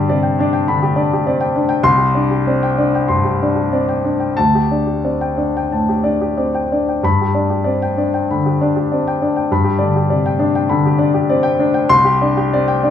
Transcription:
Already playing: G2 D3 D4 G4 D5 B5
0.09 C3 D5
0.23 G5
0.39 D4 D5
0.53 G5
0.67 D3 B5
0.83 G4
0.96 D4 D5
1.13 G4
1.26 C4 D5
1.41 G5
1.56 D4 D5
1.69 G5
1.83 C2 C6
1.97 G4
2.15 D4 D5
2.31 G4
2.47 C4 D5
2.63 G5
2.78 D4 D5
2.95 G5
3.08 G2 C6
3.24 G4
3.42 D4 D5
3.56 G4
3.73 C4 D5
3.89 G5
4.04 D4 D5
4.20 G5
4.37 D2 A5
4.55 G4
4.71 D4 D5
4.87 G4
5.04 C4 D5
5.21 G5
5.37 D4 D5
5.57 G5
5.72 A2 A5
5.89 G4
6.04 D4 D5
6.21 G4
6.37 C4 D5
6.55 G5
6.72 D4 D5
6.89 G5
7.03 G2 B5
7.21 G4
7.34 D4 D5
7.50 G4
7.64 C4 D5
7.82 G5
7.97 D4 D5
8.14 G5
8.31 D3 B5
8.46 G4
8.61 D4 D5
8.76 G4
8.92 C4 D5
9.08 G5
9.22 D4 D5
9.36 G5
9.51 G2 B5
9.64 G4
9.78 D3 D5
9.96 G4
10.10 C3 D5
10.26 G5
10.39 D4 D5
10.55 G5
10.69 D3 B5
10.86 G4
10.98 D4 D5
11.14 G4
11.30 C4 D5
11.43 G5
11.59 D4 D5
11.74 G5
11.89 C2 C6
12.05 G4
12.22 D4 D5
12.37 G4
12.53 C4 D5
12.68 G5
12.83 D4 D5

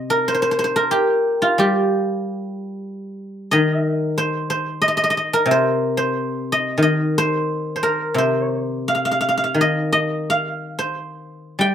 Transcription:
Already playing: C3 C5 D#5
0.10 A#4
0.28 C5
0.34 C5
0.42 C5
0.51 C5
0.59 C5
0.64 C5
0.76 A#4
0.91 G4
1.42 F4
1.58 G3 G4
3.51 D#3 D#5
4.18 C5
4.50 C5
4.82 D#5
4.88 D#5
4.97 D#5
5.04 D#5
5.10 D#5
5.17 D#5
5.33 A#4
5.46 C3
5.51 C5
5.97 C5
6.52 D#5
6.78 D#3
6.83 D#5
7.18 C5
7.76 C5
7.83 A#4
8.14 C3 C5
8.88 F5
8.95 F5
9.05 F5
9.11 F5
9.21 F5
9.29 F5
9.38 F5
9.44 F5
9.54 D#3
9.61 D#5
9.93 D#5
10.30 F5
10.79 C5
11.59 G3 G5

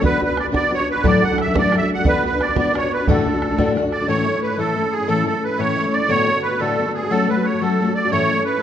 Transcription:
0.01 B3 D4 F#4 B4, bodhran
0.12 bodhran
0.19 B3 D4 F#4 B4, bodhran
0.25 B4
0.29 D4 F#4
0.37 D5, bodhran
0.45 D4 F#4 B4, bodhran
0.52 B3 D4 F#4 B4 D5, bodhran
0.70 B3 D4 F#4 B4
0.74 B4 C#5
0.80 D4 F#4
0.90 B4
0.95 D4 F#4 B4
1.03 D2 A2 F#3 A3 D4 A4 D5, bodhran
1.13 bodhran
1.22 F#3 A3 D4 A4 F#5, bodhran
1.30 F#3 A3 D4 A4
1.38 E5, bodhran
1.45 F#3 A3 D4 A4, bodhran
1.53 D2 A2 F#3 A3 D4 A4, bodhran
1.59 D5
1.72 F#3 A3 D4 A4, bodhran
1.77 A3 A4 E5
1.81 F#3 D4
1.94 A3 A4 F#5
1.98 F#3 D4
2.04 B3 D4 F#4 B4, bodhran
2.15 bodhran
2.23 B3 D4 F#4 B4, bodhran
2.32 D4 F#4 B4
2.41 D5, bodhran
2.47 D4 F#4 B4, bodhran
2.56 B3 D4 F#4 B4 D5, bodhran
2.72 B3 D4 F#4 B4, bodhran
2.77 C#5
2.81 D4 F#4 B4
2.93 B4
2.98 D4 F#4 B4
3.08 D2 A2 D3 A3 D4 F#4 A4, bodhran
3.16 bodhran
3.26 D3 A3 D4 F#4, bodhran
3.33 D3 A3 D4 F#4
3.42 bodhran
3.49 D3 A3 D4 F#4, bodhran
3.57 D2 A2 D3 A3 D4 F#4, bodhran
3.75 D3 A3 D4 F#4, bodhran
3.82 D3 A3 D4 F#4
3.92 D5, bodhran
4.00 D3 A3 D4 F#4
4.08 A2 E3 A3 C#4 E4 C#5
4.26 E3 A3 C#4 E4
4.34 A3 C#4 E4
4.42 B4
4.50 A3 C#4 E4
4.58 A2 E3 A3 C#4 E4 A4
4.75 E3 A3 C#4 E4
4.83 A3 C#4 E4
4.92 G#4
4.99 A3 C#4 E4
5.07 A2 E3 A3 C#4 E4 A4
5.25 E3 A3 C#4 E4 A4
5.33 A3 E4
5.44 B4
5.49 A3 C#4 E4
5.58 A2 E3 A3 C#4 E4 C#5
5.75 E3 A3 C#4 E4
5.84 A3 C#4 E4
5.93 D5
6.00 A3 C#4 E4
6.08 D2 A2 D3 A3 B3 F#4 C#5
6.26 D3 A3 B3 F#4
6.34 D3 A3 B3 F#4
6.42 B4
6.51 D3 A3 B3 F#4
6.60 D2 A2 D3 A3 B3 F#4 A4
6.78 D3 A3 B3 F#4
6.86 D3 A3 B3 F#4
6.94 G#4
7.03 D3 A3 B3 F#4
7.10 F#3 A3 C#4 F#4 A4
7.28 F#3 A3 C#4 F#4 B4
7.37 A3 C#4 F#4
7.44 C#5
7.52 A3 C#4 F#4
7.61 F#3 A3 C#4 F#4 A4
7.80 F#3 A3 C#4 F#4
7.88 A3 C#4 F#4
7.95 D5
8.05 A3 C#4 F#4
8.11 A2 E3 A3 C#4 E4 C#5
8.31 E3 A3 C#4 E4
8.38 A3 C#4 E4
8.45 B4
8.54 A3 C#4 E4

